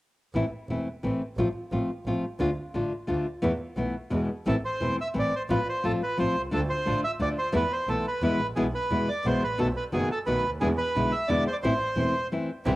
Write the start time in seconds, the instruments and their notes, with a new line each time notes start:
0.34 double bass A1, nylon-string guitar E3 A3 C4 E4
0.69 double bass E1, nylon-string guitar E3 A3 C4 E4
1.03 double bass A1, nylon-string guitar E3 A3 C4 E4
1.37 double bass A1, nylon-string guitar F3 A3 C4 F4
1.72 double bass A1, nylon-string guitar F3 A3 C4 F4
2.06 double bass A1, nylon-string guitar F3 A3 C4 F4
2.40 double bass D2, nylon-string guitar D3 A3 D4 F4
2.74 double bass A1, nylon-string guitar D3 A3 D4 F4
3.07 double bass D2, nylon-string guitar D3 A3 D4 F4
3.42 double bass E2, nylon-string guitar E3 A3 B3 E4
3.76 double bass B1, nylon-string guitar E3 A3 B3 E4
4.10 double bass E2, nylon-string guitar B2 E3 G#3 B3 E4
4.46 double bass A1, nylon-string guitar E3 A3 C4 E4, bandoneon A4
4.65 bandoneon C5
4.80 double bass E1, nylon-string guitar E3 A3 C4 E4
5.01 bandoneon E5
5.14 double bass A1, nylon-string guitar E3 A3 C4 E4
5.19 bandoneon D5
5.36 bandoneon C5
5.49 double bass A1, nylon-string guitar F3 A3 C4 F4, bandoneon B4
5.69 bandoneon C5
5.84 double bass A1, nylon-string guitar F3 A3 C4 F4, bandoneon A4
6.03 bandoneon B4
6.18 double bass A1, nylon-string guitar F3 A3 C4 F4, bandoneon C5
6.36 double bass C2
6.51 double bass D2, nylon-string guitar D3 A3 D4 F4, bandoneon A4
6.70 bandoneon C5
6.86 double bass A1, nylon-string guitar D3 A3 D4 F4
7.04 bandoneon E5
7.20 double bass D2, nylon-string guitar D3 A3 D4 F4, bandoneon D5
7.39 bandoneon C5
7.52 double bass E2, nylon-string guitar E3 A3 B3 E4, bandoneon B4
7.73 bandoneon C5
7.87 double bass B1, nylon-string guitar E3 A3 B3 E4, bandoneon A4
8.08 bandoneon B4
8.21 double bass E2, nylon-string guitar B2 E3 G#3 B3 E4, bandoneon B4
8.39 double bass A1
8.56 double bass B1, nylon-string guitar B2 E3 G#3 B3 E4, bandoneon G#4
8.75 bandoneon B4
8.90 double bass E2, nylon-string guitar B2 E3 G#3 B3 E4
9.09 bandoneon D5
9.24 double bass B1, nylon-string guitar B2 E3 G#3 B3 E4, bandoneon C5
9.42 double bass A1, bandoneon B4
9.58 double bass B1, nylon-string guitar B2 D#3 A3 B3 F#4, bandoneon A4
9.77 bandoneon B4
9.92 double bass F#1, nylon-string guitar B2 D#3 A3 B3 F#4, bandoneon G#4
10.12 bandoneon A4
10.26 double bass B1, nylon-string guitar B2 D#3 A3 B3 F#4, bandoneon B4
10.45 double bass D2
10.61 double bass E2, nylon-string guitar B2 D3 G#3 B3 E4, bandoneon G#4
10.78 bandoneon B4
10.95 double bass B1, nylon-string guitar B2 D3 G#3 B3 E4
11.12 bandoneon E5
11.28 double bass E2, nylon-string guitar B2 D3 G#3 B3 E4, bandoneon D5
11.47 bandoneon C5
11.53 bandoneon D5
11.63 double bass A1, nylon-string guitar E3 A3 C4 E4, bandoneon C5
11.96 double bass E1, nylon-string guitar E3 A3 C4 E4
12.32 nylon-string guitar E3 A3 C4 E4
12.65 double bass C2, nylon-string guitar C3 E3 G3 C4 E4, string section C4 E4 G4